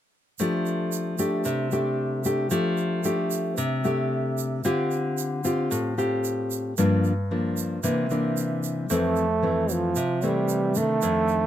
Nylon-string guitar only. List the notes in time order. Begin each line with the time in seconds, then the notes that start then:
0.40 F3 A3 D4 G4
1.19 A3 D4 G4
1.45 C3
1.72 A3 D4 G4
2.25 A3 D4 G4
2.51 F3 A3 D4 G4
3.05 A3 D4 G4
3.58 C3
3.84 A3 D4 G4
4.65 D3 C4 F4 G4
5.44 C4 F4 G4
5.71 A2
5.98 C4 F4 G4
6.78 G2 F3 A#3 D4
7.31 F3 A#3 D4
7.83 C3 E3 A#3 D4
8.10 E3 A#3 D4
8.90 F2 E3 A3 C4
9.42 E3 A3 C4
9.96 C3
10.23 E3 A3 C4
10.76 D#3 A3 D4
11.03 F2